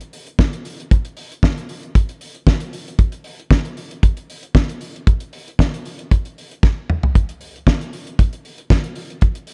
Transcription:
0.01 closed hi-hat
0.13 open hi-hat
0.27 closed hi-hat
0.39 kick, snare
0.53 closed hi-hat
0.65 open hi-hat
0.80 closed hi-hat
0.91 kick, closed hi-hat
1.05 closed hi-hat
1.17 open hi-hat
1.32 closed hi-hat
1.43 kick, snare
1.58 closed hi-hat
1.69 open hi-hat
1.83 closed hi-hat
1.95 kick, closed hi-hat
2.09 closed hi-hat
2.21 open hi-hat
2.35 closed hi-hat
2.47 kick, snare
2.60 closed hi-hat
2.73 open hi-hat
2.88 closed hi-hat
2.99 kick, closed hi-hat
3.12 closed hi-hat
3.24 open hi-hat
3.40 closed hi-hat
3.51 kick, snare
3.65 closed hi-hat
3.77 open hi-hat
3.91 closed hi-hat
4.03 kick, closed hi-hat
4.17 closed hi-hat
4.30 open hi-hat
4.43 closed hi-hat
4.55 kick, snare
4.69 closed hi-hat
4.81 open hi-hat
4.96 closed hi-hat
5.07 kick, closed hi-hat
5.20 closed hi-hat
5.33 open hi-hat
5.48 closed hi-hat
5.59 kick, snare
5.74 closed hi-hat
5.85 open hi-hat
5.99 closed hi-hat
6.11 kick, closed hi-hat
6.25 closed hi-hat
6.38 open hi-hat
6.51 closed hi-hat
6.63 kick, snare
6.90 mid tom
7.03 floor tom
7.15 kick, closed hi-hat
7.29 closed hi-hat
7.41 open hi-hat
7.56 closed hi-hat
7.67 kick, snare
7.81 closed hi-hat
7.93 open hi-hat
8.07 closed hi-hat
8.19 kick, closed hi-hat
8.33 closed hi-hat
8.45 open hi-hat
8.58 closed hi-hat
8.70 kick, snare
8.84 closed hi-hat
8.95 open hi-hat
9.10 closed hi-hat
9.21 kick, closed hi-hat
9.35 closed hi-hat
9.47 open hi-hat

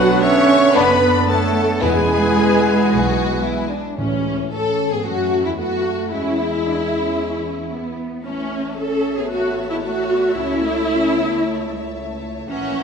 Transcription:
Already playing: B1 D3 F#3 B3 D4 F#4 B4 F#5
0.21 C#4 C#5 E5 C#6
0.74 F#1 B3 D4 B4 D5 B5
1.27 A3 A4 C#5 A5
1.81 E2 E3 G#3 B3 E4 G#4 B4 G#5
2.35 B3
2.89 B1 F#4
3.44 E4
3.70 D4
3.97 C#2 A2 E3 C#4
4.52 A2 C#4 A4
4.92 G#2 B3 G#4
5.05 F#2 A3 C#4 F#4
5.45 E2 G#3 E4
5.57 F#2 A3 B3 F#4
5.86 A3
6.11 E2 G#3 C#4 E4
6.39 B3
6.65 D4
6.93 C#4
7.72 B3
8.25 A1 E3 A3 C#4 C#5 E5 A5
8.78 C#4 A4
9.18 B3 G#4
9.30 A3 B3 F#4
9.71 G#3 E4
9.84 A3 F#4
10.11 B3
10.37 C#2 A3 C#4 E4
10.64 A3
10.91 C#4
11.17 B3
11.44 A3
11.71 G#3
11.96 A3
12.49 A#1 E3 A#3 C#4 E5 F#5 A#5

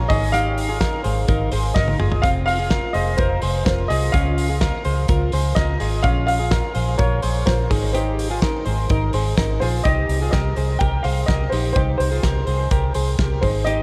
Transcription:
0.08 G#1 D#4 G#4 D#5, kick, open hi-hat
0.32 D#4 G4 F5, closed hi-hat
0.58 open hi-hat
0.69 F4 G#4
0.81 D#4 A#4, kick, snare, closed hi-hat
1.04 G#1 G#4 C5, open hi-hat
1.28 G#1 D#4 A#4, kick, closed hi-hat
1.52 G#1 G#4 C5, open hi-hat
1.74 G#1 D#4 A#4 D#5, kick, snare
1.88 high tom
2.00 G1 F4 G#4, mid tom
2.12 floor tom
2.22 F1 C4 F4 F5, kick, closed hi-hat
2.46 F5, open hi-hat
2.59 F4 G#4
2.70 F4 A#4, kick, snare, closed hi-hat
2.93 F1 G#4 C5 D#5, open hi-hat
3.17 F1 F4 A#4 C5, kick, closed hi-hat
3.42 F1 G#4 C5, open hi-hat
3.65 F1 F4 A#4 C5, kick, snare, closed hi-hat
3.88 C2 F4 G#4 D#5, open hi-hat
4.12 C#2 C#4 F4 F5, kick, closed hi-hat
4.38 open hi-hat
4.49 F4 G#4
4.61 F4 A#4, kick, snare, closed hi-hat
4.85 C#2 G#4 C5, open hi-hat
5.08 C#2 F4 A#4, kick, closed hi-hat
5.32 C#2 G#4 C5, open hi-hat
5.55 C#2 F4 A#4 D#5, kick, snare, closed hi-hat
5.80 G#1 F4 G#4, open hi-hat
6.03 A#1 C#4 F4 F5, kick, closed hi-hat
6.27 F5, open hi-hat
6.39 F4 G#4
6.51 F4 A#4, kick, snare, closed hi-hat
6.75 A#1 G#4 C5, open hi-hat
6.98 A#1 F4 A#4 C#5, kick, closed hi-hat
7.22 A#1 G#4 C5, open hi-hat
7.46 A#1 F4 A#4 C5, kick, snare, closed hi-hat
7.70 G#1 D#4 G#4, kick, open hi-hat
7.93 D#4 G4 C5, closed hi-hat
8.19 open hi-hat
8.30 F4 G#4
8.42 D#4 A#4, kick, snare, closed hi-hat
8.65 G#1 G#4 C5, open hi-hat
8.89 G#1 D#4 A#4, kick, closed hi-hat
9.13 G#1 G#4 C5, open hi-hat
9.38 G#1 D#4 A#4, kick, snare, closed hi-hat
9.60 A#1 F4 G#4 C5, open hi-hat
9.84 C2 D#4 G4 D#5, kick, closed hi-hat
10.09 C2, open hi-hat
10.21 F4 G#4
10.31 C2 G4 A#4 D#5, kick, snare, closed hi-hat
10.56 C2 G#4 C5, open hi-hat
10.79 C2 G4 A#4 G5, kick, closed hi-hat
11.03 C2 G#4 C5 F5, open hi-hat
11.26 C2 G4 A#4 D#5, kick, snare, closed hi-hat
11.50 A#1 D#4 G4 C5, open hi-hat
11.73 C2 G4 C5, kick, closed hi-hat
11.77 D#4
11.98 C2 C5, open hi-hat
12.11 F4 G#4
12.23 C2 G4 A#4, kick, snare, closed hi-hat
12.47 C2 G#4 C5, open hi-hat
12.71 C2 G4 A#4, kick, closed hi-hat
12.94 C2 G#4 C5, open hi-hat
13.19 C2 G4 A#4, kick, snare, closed hi-hat
13.41 G#1 D#4 G#4 C5, kick, open hi-hat
13.64 D#4 G4 D#5, closed hi-hat

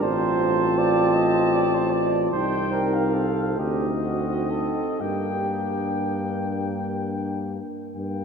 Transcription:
0.02 A1 C4 F4 C5 A5
0.78 D5
1.15 D#5
1.53 D5
1.74 C5
1.90 D5
2.32 C2 C4 D#4 C5 G5
2.72 A#4
2.94 F5
3.14 A4
3.58 D2 C4 D#4 G4 D#5
4.04 F#4
4.50 A4
5.00 G2 A#3 D4 G4 G5
7.96 G2 A#3 D4 G5

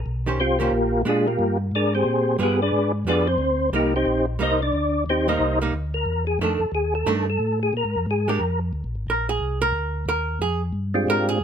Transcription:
0.06 B1
0.26 D#3 C#4 G4 C5
0.38 C2 C4 F4 G4 C5
0.59 D#3 A#3 C#4 F4 G4 A#4 C5
0.71 A#1
1.05 A#2 G#3 D4 F4 G4 G#4
1.27 A#3 F4 G4 A#4
1.39 G2
1.72 G#2 G#4 D5
1.76 D4 A#4
1.95 C4 G4 G#4 C5
2.05 A#2
2.39 G2 G3 B3 F4 G#4
2.43 B3 G4 G#4 B4
2.62 D4 G#4 B4 D5
2.72 G#2
3.05 F2 G3 B3 F4 G#4
3.09 D4 B4 D5
3.28 C4 C5
3.38 D2
3.72 C2 G3 A#3 D#4 G4 A#4
3.96 C4 D#4 G4 C5
4.06 A#1
4.39 C2 G3 A#3 D#4 A#4 D#5
4.43 C5
4.62 D4 D5
4.73 D2
5.06 D#2 C4 C5
5.10 D#4 G4
5.28 G3 A#3 D#4 A#4 C5 D#5
5.39 C2
5.61 G3 A#3 D#4
5.73 D2
5.94 A#4
6.06 E2
6.27 G#4
6.39 F2 D#3 A3 D4 A4
6.59 F2
6.72 D#2 G#4
6.95 A4
7.06 G2 D#3 A3 D4
7.30 A4
7.40 A2
7.63 G#4
7.73 A#2
7.77 A#4
7.85 G#2
7.96 F2
8.06 G#2
8.11 G#4
8.28 G#3 D4 G4 A#4
8.40 F2
8.73 D2
8.84 A#1
8.95 G#1
9.07 A#1 A#4
9.29 G#4
9.40 C2
9.62 A#4
9.72 D2
10.06 D#2 A#4
10.39 F2 G#4
10.73 G2
10.94 G#3 C4 D4 F4 G4
11.07 G#2 A#4
11.29 G#4
11.40 F2

